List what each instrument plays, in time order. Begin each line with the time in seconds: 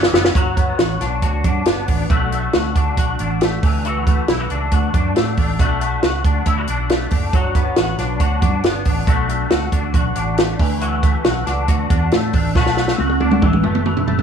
Already playing: clean electric guitar E3 B3 C#4
0.03 snare
0.13 fingered electric bass F#1, clean electric guitar B3, snare
0.24 clean electric guitar C#4, snare
0.35 fingered electric bass G1, clean electric guitar F#3 F#4, kick, closed hi-hat
0.57 clean electric guitar B3, kick, closed hi-hat
0.79 fingered electric bass A1, clean electric guitar F#4, snare, closed hi-hat
1.01 fingered electric bass B1, clean electric guitar D4, snare, closed hi-hat
1.22 fingered electric bass D2, clean electric guitar F#4, kick, closed hi-hat
1.44 fingered electric bass G2, clean electric guitar D4, kick, closed hi-hat
1.65 fingered electric bass G1, clean electric guitar B3, snare, closed hi-hat
1.88 fingered electric bass A1, clean electric guitar D4, kick, open hi-hat
2.10 fingered electric bass B1, clean electric guitar A3 F#4, kick, closed hi-hat
2.32 clean electric guitar A3, closed hi-hat
2.53 fingered electric bass D2, clean electric guitar F#4, snare, closed hi-hat
2.76 fingered electric bass D2, clean electric guitar D4, kick, closed hi-hat
2.97 fingered electric bass B1, clean electric guitar F#4, kick, closed hi-hat
3.19 fingered electric bass A1, clean electric guitar D4, closed hi-hat
3.41 clean electric guitar A3, snare, closed hi-hat
3.63 fingered electric bass D2, clean electric guitar E3, kick, open hi-hat
3.85 clean electric guitar E3 F#4, closed hi-hat
4.07 clean electric guitar A3, kick, closed hi-hat
4.28 fingered electric bass B1, clean electric guitar E4, snare, closed hi-hat
4.40 clean electric guitar F#4
4.50 fingered electric bass C#2, clean electric guitar D4, closed hi-hat
4.71 fingered electric bass D2, clean electric guitar F#4, kick, closed hi-hat
4.94 fingered electric bass F#2, clean electric guitar D4, kick, closed hi-hat
5.16 fingered electric bass A2, clean electric guitar A3, snare, closed hi-hat
5.37 fingered electric bass A1, clean electric guitar D4, kick, open hi-hat
5.59 fingered electric bass B1, clean electric guitar A3 F#4, kick, closed hi-hat
5.81 clean electric guitar A3, closed hi-hat
6.03 fingered electric bass C#2, clean electric guitar F#4, snare, closed hi-hat
6.24 fingered electric bass D2, clean electric guitar D4, kick, closed hi-hat
6.46 fingered electric bass D2, clean electric guitar E4, kick, closed hi-hat
6.58 clean electric guitar F#4
6.67 fingered electric bass B1, clean electric guitar D4, closed hi-hat
6.89 clean electric guitar A3, snare, closed hi-hat
7.11 fingered electric bass F#1, clean electric guitar D4, kick, open hi-hat
7.33 fingered electric bass G1, clean electric guitar F#3 F#4, kick, closed hi-hat
7.55 clean electric guitar B3, kick, closed hi-hat
7.76 fingered electric bass A1, clean electric guitar F#4, snare, closed hi-hat
7.98 fingered electric bass B1, clean electric guitar D4, snare, closed hi-hat
8.20 fingered electric bass D2, clean electric guitar F#4, kick, closed hi-hat
8.42 fingered electric bass G2, clean electric guitar D4, kick, closed hi-hat
8.64 fingered electric bass G1, clean electric guitar B3, snare, closed hi-hat
8.85 fingered electric bass A1, clean electric guitar D4, kick, open hi-hat
9.07 fingered electric bass B1, clean electric guitar A3 F#4, kick, closed hi-hat
9.29 clean electric guitar A3, closed hi-hat
9.50 fingered electric bass D2, clean electric guitar F#4, snare, closed hi-hat
9.72 fingered electric bass D2, clean electric guitar D4, kick, closed hi-hat
9.94 fingered electric bass B1, clean electric guitar F#4, kick, closed hi-hat
10.15 fingered electric bass A1, clean electric guitar D4, closed hi-hat
10.38 clean electric guitar A3, snare, closed hi-hat
10.59 fingered electric bass D2, clean electric guitar E3, kick, open hi-hat
10.81 clean electric guitar E3 F#4, closed hi-hat
11.03 clean electric guitar A3, kick, closed hi-hat
11.24 fingered electric bass B1, clean electric guitar F#4, snare, closed hi-hat
11.46 fingered electric bass C#2, clean electric guitar D4, snare, closed hi-hat
11.68 fingered electric bass D2, clean electric guitar F#4, kick, closed hi-hat
11.90 fingered electric bass E2, clean electric guitar D4, kick, closed hi-hat
12.12 fingered electric bass A2, clean electric guitar A3, snare, closed hi-hat
12.33 fingered electric bass A1, clean electric guitar D4, kick, open hi-hat
12.55 fingered electric bass B1, clean electric guitar A3 F#4, kick, snare
12.66 snare
12.77 clean electric guitar A3, snare
12.88 snare
12.98 fingered electric bass C#2, clean electric guitar F#4, high tom
13.09 high tom
13.20 fingered electric bass D2, clean electric guitar D4, high tom
13.31 mid tom
13.42 fingered electric bass A1, clean electric guitar E3, kick, mid tom
13.53 mid tom
13.64 fingered electric bass F#1, clean electric guitar A3, mid tom
13.75 mid tom
13.86 clean electric guitar E3, mid tom
13.97 floor tom
14.07 fingered electric bass F#1, clean electric guitar A3, floor tom
14.19 floor tom